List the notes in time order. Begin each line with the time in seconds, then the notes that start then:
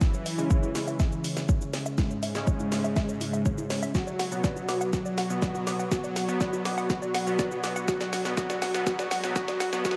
0.01 C#3 E3 C#4 E4 G#4 E5, kick, snare, shaker
0.14 C#5, shaker
0.26 E5, mid tom, open hi-hat, shaker
0.38 C#3 G#3 C#4, shaker
0.51 C#5, kick, shaker
0.63 E4, mid tom, shaker
0.75 C#3 G#3 C#4 C#6, snare, open hi-hat, shaker
0.88 E5, shaker
1.00 E5, kick, snare, shaker
1.12 C#5, shaker
1.24 E4, open hi-hat, shaker
1.37 E5, snare, mid tom, shaker
1.49 C#5, kick, shaker
1.61 E4, shaker
1.73 C#5, snare, mid tom, open hi-hat, shaker
1.86 E5, shaker
1.98 G#2 G#3 E4 F#4, kick, snare, shaker
2.10 C#5, mid tom, shaker
2.23 E5, open hi-hat, shaker
2.35 C#3 G#3 C#4, snare, shaker
2.47 C#5, kick, mid tom, shaker
2.60 E4, shaker
2.72 C#3 G#3 C#4 C#6, snare, open hi-hat, shaker
2.84 E5, mid tom, shaker
2.96 E5, kick, snare, shaker
3.09 C#5, shaker
3.21 E4, mid tom, open hi-hat, shaker
3.33 E5, shaker
3.46 C#5, kick, shaker
3.58 E4, mid tom, shaker
3.70 C#5, snare, open hi-hat, shaker
3.83 E5, shaker
3.95 B2 F#3 B3 F#4 D5, kick, snare, shaker
4.07 D5, mid tom, shaker
4.19 F#5, snare, open hi-hat, shaker
4.32 B2 F#3 B3, shaker
4.44 D5, kick, snare, shaker
4.56 F#4, shaker
4.69 B2 F#3 B3 D6, snare, open hi-hat, shaker
4.81 F#5, mid tom, shaker
4.93 F#3 F#4, kick, snare, shaker
5.05 D5, shaker
5.18 F#5, snare, mid tom, open hi-hat, shaker
5.30 B2 F#3 B3, shaker
5.42 D5, kick, snare, shaker
5.55 F#4, mid tom, shaker
5.67 B2 F#3 B3 D6, snare, open hi-hat, shaker
5.79 F#5, shaker
5.91 F#3 F#4, kick, snare, mid tom, shaker
6.04 D5, shaker
6.16 F#5, snare, open hi-hat, shaker
6.28 B2 F#3 B3, mid tom, shaker
6.41 D5, kick, snare, shaker
6.53 F#4, shaker
6.65 B2 F#3 B3 D6, snare, mid tom, open hi-hat, shaker
6.78 F#5, shaker
6.90 F#3 F#4, kick, snare, shaker
7.02 D5, mid tom, shaker
7.14 F#5, snare, open hi-hat, shaker
7.27 B2 F#3 B3, shaker
7.39 D5, kick, snare, shaker
7.51 F#4, shaker
7.64 B2 F#3 B3 D6, snare, open hi-hat, shaker
7.76 F#5, mid tom, shaker
7.88 F#3 G#3 F#4 G#4 B4, kick, snare, shaker
8.00 D5, snare, shaker
8.13 F#5, snare, mid tom, open hi-hat, shaker
8.25 B2 F#3 B3, snare, shaker
8.37 F#3 F#4, kick, snare, shaker
8.50 D5, snare, mid tom, shaker
8.62 F#5, snare, open hi-hat, shaker
8.74 B2 F#3 B3, snare, shaker
8.87 F#3 F#4, kick, snare, shaker
8.99 D5, snare, shaker
9.11 F#5, snare, open hi-hat, shaker
9.24 B2 F#3 B3, snare, mid tom, shaker
9.36 F#3 F#4, kick, snare, shaker
9.48 D5, snare, shaker
9.60 F#5, snare, open hi-hat, shaker
9.73 B2 F#3 B3, snare, shaker
9.85 B2 F#3 B3 F#4, kick, snare, shaker
9.91 snare